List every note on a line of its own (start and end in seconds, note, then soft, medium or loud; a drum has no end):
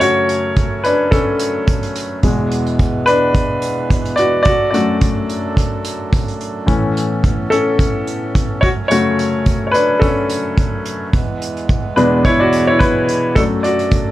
0.00 0.12 F#2 soft
0.00 2.21 F#2 medium
0.00 0.12 C#3 soft
0.00 2.21 F#3 medium
0.00 0.12 A3 soft
0.00 2.21 A3 medium
0.00 2.19 C#4 soft
0.00 0.02 F#4 medium
0.00 0.81 F#4 medium
0.00 2.21 C#5 medium
0.00 2.25 C#5 medium
0.00 closed hi-hat medium
0.29 closed hi-hat soft
0.56 kick medium
0.56 closed hi-hat medium
0.84 1.11 D4 medium
0.84 1.13 B4 medium
0.84 closed hi-hat soft
1.11 1.92 C#4 soft
1.11 1.91 A4 medium
1.11 kick medium
1.11 closed hi-hat medium
1.40 closed hi-hat medium
1.68 kick medium
1.68 closed hi-hat medium
1.83 closed hi-hat soft
1.96 closed hi-hat medium
2.23 2.61 E2 soft
2.23 4.44 E2 medium
2.23 2.62 B2 soft
2.23 4.44 E3 medium
2.23 4.44 G#3 medium
2.23 2.62 G#3 soft
2.23 4.43 B3 medium
2.23 4.44 B4 medium
2.23 kick medium
2.23 closed hi-hat medium
2.52 closed hi-hat soft
2.67 closed hi-hat soft
2.79 kick medium
2.79 closed hi-hat medium
3.06 4.15 D4 medium
3.06 4.21 B4 medium
3.06 closed hi-hat medium
3.35 kick medium
3.35 closed hi-hat medium
3.62 closed hi-hat medium
3.90 kick medium
3.90 closed hi-hat medium
4.06 closed hi-hat soft
4.16 4.45 F#4 medium
4.16 4.41 D5 medium
4.16 closed hi-hat soft
4.43 6.66 F#2 medium
4.43 6.66 A3 medium
4.43 6.66 D4 medium
4.43 4.72 F#4 medium
4.43 8.59 A4 medium
4.43 4.69 D5 medium
4.43 kick medium
4.43 closed hi-hat medium
4.47 6.67 F#3 medium
4.71 5.53 F#2 soft
4.71 5.53 F#3 soft
4.71 5.53 A3 soft
4.71 6.37 F#4 medium
4.71 6.35 D5 medium
4.71 closed hi-hat medium
5.01 kick medium
5.01 closed hi-hat medium
5.29 closed hi-hat medium
5.57 kick medium
5.57 closed hi-hat medium
5.84 closed hi-hat medium
6.13 kick loud
6.13 closed hi-hat medium
6.28 closed hi-hat soft
6.41 closed hi-hat soft
6.66 8.58 A2 soft
6.66 8.61 A2 medium
6.66 8.58 E3 soft
6.66 8.61 E3 medium
6.66 8.61 B3 medium
6.66 7.51 C#4 soft
6.66 11.09 C#4 medium
6.66 kick medium
6.66 closed hi-hat medium
6.97 closed hi-hat medium
7.24 kick medium
7.24 closed hi-hat medium
7.50 8.59 C#4 medium
7.50 8.66 A4 medium
7.50 closed hi-hat medium
7.79 kick medium
7.79 closed hi-hat medium
8.07 closed hi-hat medium
8.35 kick medium
8.35 closed hi-hat medium
8.61 11.10 F#2 medium
8.61 11.10 F#3 medium
8.61 11.10 A3 medium
8.61 8.69 F#4 medium
8.61 8.67 C#5 medium
8.61 11.11 C#5 medium
8.61 kick medium
8.61 closed hi-hat medium
8.88 9.29 F#2 soft
8.88 9.29 C#3 soft
8.88 9.30 A3 soft
8.88 9.65 F#4 medium
8.88 9.65 C#5 medium
8.88 closed hi-hat medium
9.19 closed hi-hat soft
9.46 kick medium
9.46 closed hi-hat medium
9.67 9.74 C#5 medium
9.71 10.00 D4 medium
9.71 9.99 B4 medium
9.71 closed hi-hat medium
10.00 10.82 C#4 medium
10.00 10.80 A4 medium
10.00 kick medium
10.00 closed hi-hat medium
10.30 closed hi-hat medium
10.58 kick loud
10.58 closed hi-hat medium
10.86 closed hi-hat medium
11.13 13.34 E2 medium
11.13 13.33 E3 medium
11.13 13.33 G#3 soft
11.13 13.33 B3 medium
11.13 13.34 B4 medium
11.13 kick medium
11.13 closed hi-hat medium
11.42 closed hi-hat medium
11.57 closed hi-hat soft
11.69 kick medium
11.69 closed hi-hat medium
11.96 13.32 E2 soft
11.96 13.32 B2 soft
11.96 13.32 G#3 medium
11.96 12.23 D4 medium
11.96 12.25 B4 medium
11.96 closed hi-hat medium
12.25 12.40 E4 medium
12.25 12.41 C#5 medium
12.25 kick medium
12.25 closed hi-hat medium
12.40 12.67 F#4 medium
12.40 12.69 D5 medium
12.53 closed hi-hat medium
12.67 12.75 E4 medium
12.67 12.72 C#5 medium
12.79 13.32 E4 medium
12.79 13.37 B4 medium
12.79 kick medium
12.79 closed hi-hat medium
13.09 closed hi-hat medium
13.35 14.12 F#2 medium
13.35 14.12 F#2 soft
13.35 14.12 F#3 soft
13.35 14.12 A3 medium
13.35 14.12 A3 soft
13.35 14.12 D4 soft
13.35 13.43 D4 medium
13.35 13.42 A4 medium
13.35 14.12 A4 medium
13.35 kick medium
13.35 closed hi-hat medium
13.63 14.12 F#4 medium
13.63 14.12 D5 medium
13.63 closed hi-hat medium
13.79 closed hi-hat soft
13.91 kick medium
13.91 closed hi-hat medium